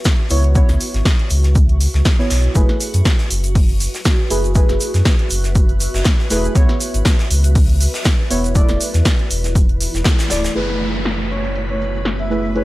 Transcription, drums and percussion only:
0.05 kick, snare, closed hi-hat, shaker
0.30 open hi-hat, shaker
0.44 closed hi-hat
0.55 kick, closed hi-hat, shaker
0.69 snare, closed hi-hat
0.81 open hi-hat, shaker
0.94 snare, closed hi-hat
1.05 kick, snare, closed hi-hat, shaker
1.19 closed hi-hat
1.30 open hi-hat, shaker
1.44 snare, closed hi-hat
1.55 kick, closed hi-hat, shaker
1.69 closed hi-hat
1.81 open hi-hat, shaker
1.94 snare, closed hi-hat
2.05 kick, snare, closed hi-hat, shaker
2.19 snare
2.30 snare, open hi-hat, shaker
2.44 closed hi-hat
2.55 kick, closed hi-hat, shaker
2.69 snare, closed hi-hat
2.80 open hi-hat, shaker
2.94 closed hi-hat, shaker
3.05 kick, snare, closed hi-hat, shaker
3.19 snare, closed hi-hat
3.31 open hi-hat, shaker
3.44 closed hi-hat, shaker
3.55 kick, closed hi-hat, open hi-hat, shaker
3.69 closed hi-hat
3.80 open hi-hat, shaker
3.94 snare, closed hi-hat, shaker
4.05 kick, snare, closed hi-hat, shaker
4.30 open hi-hat, shaker
4.44 closed hi-hat, shaker
4.55 kick, closed hi-hat, shaker
4.69 snare, closed hi-hat
4.80 open hi-hat, shaker
4.94 snare, closed hi-hat, shaker
5.05 kick, snare, closed hi-hat, shaker
5.19 closed hi-hat
5.30 open hi-hat, shaker
5.31 shaker
5.44 snare, closed hi-hat, shaker
5.55 kick, closed hi-hat, shaker
5.69 closed hi-hat
5.80 open hi-hat, shaker
5.94 snare, closed hi-hat, shaker
6.05 kick, snare, closed hi-hat, shaker
6.19 snare
6.30 snare, open hi-hat, shaker
6.44 closed hi-hat, shaker
6.55 kick, closed hi-hat, shaker
6.69 snare, closed hi-hat
6.80 open hi-hat, shaker
6.94 closed hi-hat, shaker
7.05 kick, snare, closed hi-hat, shaker
7.19 snare, closed hi-hat
7.31 open hi-hat, shaker
7.44 closed hi-hat, shaker
7.55 kick, closed hi-hat, open hi-hat, shaker
7.69 closed hi-hat
7.81 open hi-hat, shaker
7.94 snare, closed hi-hat, shaker
8.04 kick, snare, closed hi-hat, shaker
8.06 shaker
8.31 open hi-hat, shaker
8.44 closed hi-hat, shaker
8.55 kick, closed hi-hat, shaker
8.69 snare, closed hi-hat
8.81 open hi-hat, shaker
8.94 snare, closed hi-hat, shaker
9.05 kick, snare, closed hi-hat, shaker
9.19 closed hi-hat
9.30 open hi-hat, shaker
9.44 snare, closed hi-hat, shaker
9.55 kick, closed hi-hat, shaker
9.69 closed hi-hat
9.81 open hi-hat, shaker
9.94 snare, closed hi-hat, shaker
10.04 kick, snare, closed hi-hat, shaker
10.19 snare, closed hi-hat, shaker
10.30 snare, open hi-hat, shaker
10.44 snare, closed hi-hat, shaker
10.56 closed hi-hat
10.69 snare
10.81 shaker
10.94 closed hi-hat
11.05 snare, closed hi-hat, shaker
11.31 shaker
11.44 closed hi-hat, shaker
11.56 closed hi-hat, shaker
11.69 closed hi-hat
11.81 shaker
11.95 shaker
12.05 snare, closed hi-hat, shaker
12.19 closed hi-hat
12.31 shaker
12.45 shaker
12.56 closed hi-hat, shaker

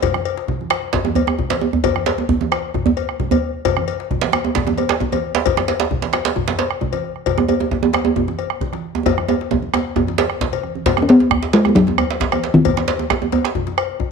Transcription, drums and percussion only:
0.02 bombo low, cowbell, djembe slap, djembe tone, low conga, djembe bass
0.14 bombo rim, high conga
0.25 cowbell, high conga
0.37 djembe slap
0.48 bombo low, djembe tone, low conga
0.61 high conga
0.70 bombo rim, cowbell, djembe slap, high conga
0.83 high conga
0.93 bombo rim, bombo low, djembe slap, djembe tone, djembe bass, low conga
1.05 bombo rim, djembe slap, djembe tone, high conga
1.15 bombo rim, cowbell, djembe bass
1.27 bombo rim, djembe tone
1.39 bombo low, djembe tone, low conga
1.50 cowbell, djembe slap, high conga
1.61 djembe slap, djembe tone
1.73 bombo rim, djembe bass
1.84 bombo rim, bombo low, cowbell, djembe slap, djembe tone, high conga, djembe bass, low conga
1.96 bombo rim, djembe slap, high conga
2.06 bombo rim, cowbell, djembe slap, high conga
2.18 djembe slap, djembe tone, high conga
2.29 bombo low, djembe tone, djembe bass, low conga
2.41 high conga, djembe tone
2.52 bombo rim, cowbell, djembe slap
2.74 bombo rim, bombo low, djembe slap, djembe tone, low conga, djembe bass
2.86 djembe slap, djembe bass
2.97 bombo rim, cowbell, djembe slap, high conga
3.09 bombo rim, djembe slap
3.19 bombo low, djembe slap, djembe tone, low conga
3.31 cowbell, high conga, djembe bass
3.65 bombo low, cowbell, djembe slap, djembe tone, low conga, djembe bass
3.77 bombo rim, high conga
3.88 cowbell, high conga
4.00 djembe slap
4.11 bombo low, djembe tone, low conga
4.21 djembe slap, high conga
4.32 bombo rim, cowbell, djembe slap, djembe tone
4.44 djembe tone
4.55 bombo rim, bombo low, djembe slap, djembe tone, djembe bass, low conga
4.67 bombo rim, djembe slap, djembe tone, high conga
4.78 bombo rim, cowbell, djembe tone
4.89 bombo rim, djembe slap
5.00 bombo low, djembe tone, low conga
5.12 bombo rim, cowbell, djembe slap, djembe tone, high conga
5.24 djembe slap
5.35 bombo rim, djembe slap
5.46 bombo low, cowbell, djembe slap, djembe tone, low conga, djembe bass
5.57 bombo rim, djembe slap, high conga
5.68 cowbell, djembe slap, high conga
5.80 djembe slap
5.91 bombo low, djembe tone, low conga
6.02 djembe slap, high conga
6.13 bombo rim, cowbell, djembe slap, high conga
6.25 djembe slap, high conga
6.36 bombo rim, bombo low, djembe tone, djembe bass, low conga
6.48 djembe slap, high conga
6.58 bombo rim, cowbell, djembe slap
6.71 bombo rim
6.81 bombo low, djembe tone, low conga
6.93 bombo rim, cowbell, djembe slap, high conga
7.05 djembe slap
7.16 bombo rim
7.26 bombo low, cowbell, djembe slap, djembe tone, low conga, djembe bass
7.38 bombo rim, djembe tone, high conga
7.48 cowbell, djembe tone
7.60 djembe slap, djembe tone
7.71 bombo low, djembe tone, low conga
7.83 high conga, djembe tone
7.93 bombo rim, cowbell, djembe slap, djembe tone
8.05 djembe tone
8.16 bombo rim, bombo low, djembe tone, low conga, djembe bass
8.28 bombo rim, djembe slap, high conga
8.38 bombo rim, cowbell
8.50 bombo rim
8.61 bombo low, djembe tone, low conga
8.73 bombo rim, djembe slap, high conga
8.95 bombo rim, djembe tone
9.06 bombo rim, bombo low, cowbell, djembe slap, djembe tone, high conga, low conga, djembe bass
9.18 bombo rim, high conga
9.29 cowbell, djembe slap, djembe tone
9.41 djembe slap
9.51 bombo low, djembe slap, djembe tone, high conga, low conga
9.62 djembe slap, high conga
9.74 bombo rim, cowbell, djembe slap, djembe tone
9.96 bombo rim, bombo low, djembe tone, low conga, djembe bass
10.07 djembe slap, high conga
10.18 bombo rim, cowbell, djembe slap
10.30 bombo rim, high conga
10.41 bombo low, djembe slap, djembe tone, low conga
10.53 cowbell, djembe slap, low conga
10.63 bombo rim, high conga
10.75 high conga
10.86 bombo low, cowbell, djembe slap, high conga, djembe tone, low conga, djembe bass
10.97 bombo rim, high conga, djembe tone
11.08 bombo rim, cowbell, djembe slap, high conga
11.20 djembe slap, djembe tone
11.31 bombo rim, bombo low, high conga, djembe tone, djembe bass
11.43 djembe slap
11.53 cowbell, djembe slap
11.65 bombo rim, djembe tone
11.75 bombo low, djembe slap, djembe tone, djembe bass, low conga
11.87 djembe slap, high conga, djembe tone
11.98 bombo rim, cowbell, djembe bass
12.10 djembe slap
12.20 bombo low, djembe slap, djembe tone
12.32 bombo rim, cowbell, djembe slap, high conga, djembe tone
12.44 djembe slap
12.55 djembe tone
12.65 bombo low, cowbell, djembe slap, djembe tone, high conga, djembe bass, low conga
12.77 bombo rim, djembe slap, high conga
12.88 bombo rim, cowbell, djembe slap
12.99 djembe slap, djembe tone
13.10 bombo rim, bombo low, djembe slap, djembe tone, high conga
13.22 djembe tone, high conga
13.32 cowbell, djembe slap, djembe bass
13.45 bombo rim, djembe slap
13.55 bombo low, djembe tone, djembe bass, low conga
13.67 djembe slap, high conga
13.78 bombo rim, cowbell
13.89 djembe slap
14.00 bombo low, djembe tone

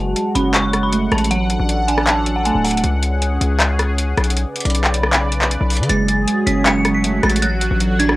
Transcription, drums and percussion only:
0.16 closed hi-hat
0.35 closed hi-hat
0.54 clap, closed hi-hat
0.73 cross-stick, closed hi-hat
0.93 closed hi-hat
1.12 cross-stick, closed hi-hat
1.18 closed hi-hat
1.24 closed hi-hat
1.31 closed hi-hat
1.50 closed hi-hat
1.69 closed hi-hat
1.88 closed hi-hat
1.98 cross-stick
2.07 clap, closed hi-hat
2.26 closed hi-hat
2.45 closed hi-hat
2.65 closed hi-hat, open hi-hat
2.71 closed hi-hat
2.77 closed hi-hat
2.84 closed hi-hat
3.03 closed hi-hat
3.22 closed hi-hat
3.41 closed hi-hat
3.60 clap, closed hi-hat
3.79 cross-stick, closed hi-hat
3.98 closed hi-hat
4.17 cross-stick, closed hi-hat
4.24 closed hi-hat
4.30 closed hi-hat
4.37 closed hi-hat
4.56 closed hi-hat
4.60 closed hi-hat
4.65 closed hi-hat
4.70 closed hi-hat
4.75 closed hi-hat
4.84 clap
4.94 closed hi-hat
5.03 cross-stick
5.13 clap, closed hi-hat
5.32 closed hi-hat
5.42 clap
5.51 closed hi-hat
5.70 closed hi-hat, open hi-hat
5.77 closed hi-hat
5.83 closed hi-hat
5.89 closed hi-hat
6.08 closed hi-hat
6.28 closed hi-hat
6.47 closed hi-hat
6.66 clap, closed hi-hat
6.85 cross-stick, closed hi-hat
7.04 closed hi-hat
7.23 cross-stick, closed hi-hat
7.30 closed hi-hat
7.36 closed hi-hat
7.42 closed hi-hat
7.61 closed hi-hat
7.80 closed hi-hat
8.00 closed hi-hat
8.09 cross-stick

